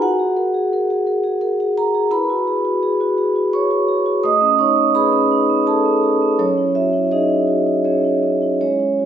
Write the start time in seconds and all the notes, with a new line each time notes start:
0.02 F#4 F#5
0.19 G#4
0.37 A#4
0.54 G#4
0.73 A#4
0.90 G#4
1.07 A#4
1.24 G#4
1.41 A#4
1.60 G#4
1.78 A#4 A#5
1.95 G#4
2.11 E4 B4 B5
2.30 F#4
2.48 G#4
2.65 F#4
2.83 G#4
3.01 F#4
3.18 G#4
3.36 F#4
3.53 G#4 C#5 C#6
3.71 F#4
3.88 G#4
4.06 F#4
4.23 A3 D#5 D#6
4.41 C#4
4.59 D#4 C#5 C#6
4.76 C#4
4.95 G#4 B4 B5
5.12 C#4
5.32 D#4
5.49 C#4
5.67 G#4 A4 A5
5.85 C#4
6.04 G#4
6.22 C#4
6.39 F#3 C#4 C#5
6.58 E4
6.75 E4 F#4 E5
6.93 E4
7.11 D#4 G#4 D#5
7.30 E4
7.47 F#4
7.66 E4
7.85 C#4 G#4 C#5
8.04 E4
8.23 C#4
8.42 E4
8.61 G#3 C#4 C#5
8.79 E4
8.99 F#4